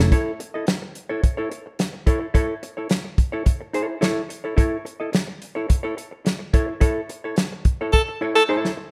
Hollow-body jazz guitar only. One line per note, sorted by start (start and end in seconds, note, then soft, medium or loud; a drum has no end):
0.00 0.11 E4 medium
0.00 0.11 A4 medium
0.00 0.11 C#5 medium
0.12 0.31 E4 medium
0.12 0.31 A4 medium
0.12 0.31 C#5 medium
0.40 muted hollow-body jazz guitar stroke soft
0.54 0.66 E4 soft
0.54 0.67 A4 soft
0.54 0.68 D#5 medium
0.68 muted hollow-body jazz guitar stroke soft
0.82 muted hollow-body jazz guitar stroke soft
1.09 1.22 E4 medium
1.09 1.23 A4 medium
1.09 1.23 C#5 medium
1.24 muted hollow-body jazz guitar stroke soft
1.37 1.50 E4 medium
1.37 1.50 A4 medium
1.37 1.51 C#5 medium
1.51 muted hollow-body jazz guitar stroke soft
1.66 muted hollow-body jazz guitar stroke soft
1.79 muted hollow-body jazz guitar stroke soft
1.93 muted hollow-body jazz guitar stroke soft
2.06 2.25 E4 medium
2.06 2.20 A4 medium
2.06 2.19 C#5 medium
2.21 muted hollow-body jazz guitar stroke soft
2.34 2.53 E4 medium
2.34 2.53 A4 medium
2.34 2.54 C#5 medium
2.63 muted hollow-body jazz guitar stroke soft
2.77 2.89 E4 soft
2.77 2.89 A4 soft
2.77 2.89 C#5 medium
2.90 muted hollow-body jazz guitar stroke soft
3.04 muted hollow-body jazz guitar stroke soft
3.32 3.44 E4 medium
3.32 3.44 A4 medium
3.32 3.45 C#5 medium
3.45 muted hollow-body jazz guitar stroke soft
3.61 muted hollow-body jazz guitar stroke soft
3.73 3.95 E4 medium
3.73 3.88 A4 medium
3.73 3.87 C#5 medium
3.88 muted hollow-body jazz guitar stroke soft
4.01 4.20 E4 medium
4.01 4.21 A4 medium
4.01 4.21 C#5 loud
4.29 muted hollow-body jazz guitar stroke soft
4.44 4.55 E4 soft
4.44 4.56 A4 medium
4.44 4.56 C#5 medium
4.57 4.76 E4 medium
4.57 4.76 A4 medium
4.57 4.77 C#5 medium
4.85 muted hollow-body jazz guitar stroke soft
5.00 5.11 E4 soft
5.00 5.12 A4 medium
5.00 5.13 D#5 medium
5.12 muted hollow-body jazz guitar stroke soft
5.27 muted hollow-body jazz guitar stroke soft
5.55 5.67 E4 medium
5.55 5.68 A4 medium
5.55 5.68 C#5 medium
5.69 muted hollow-body jazz guitar stroke soft
5.83 5.96 E4 medium
5.83 5.96 A4 medium
5.83 5.96 C#5 medium
5.97 muted hollow-body jazz guitar stroke soft
6.11 muted hollow-body jazz guitar stroke soft
6.25 muted hollow-body jazz guitar stroke soft
6.39 muted hollow-body jazz guitar stroke soft
6.53 6.72 E4 medium
6.53 6.68 A4 medium
6.53 6.67 C#5 medium
6.68 muted hollow-body jazz guitar stroke soft
6.80 7.00 E4 medium
6.80 7.00 A4 medium
6.80 7.00 C#5 medium
7.09 muted hollow-body jazz guitar stroke soft
7.24 7.36 E4 soft
7.24 7.37 A4 medium
7.24 7.37 C#5 medium
7.38 muted hollow-body jazz guitar stroke soft
7.53 muted hollow-body jazz guitar stroke soft
7.81 7.92 E4 medium
7.81 7.93 A4 medium
7.81 7.93 C#5 medium
7.94 muted hollow-body jazz guitar stroke soft
8.08 muted hollow-body jazz guitar stroke soft
8.21 8.40 E4 medium
8.21 8.35 A4 medium
8.21 8.35 C#5 medium
8.36 muted hollow-body jazz guitar stroke soft
8.49 8.69 E4 medium
8.49 8.70 A4 medium
8.49 8.70 C#5 medium
8.77 muted hollow-body jazz guitar stroke soft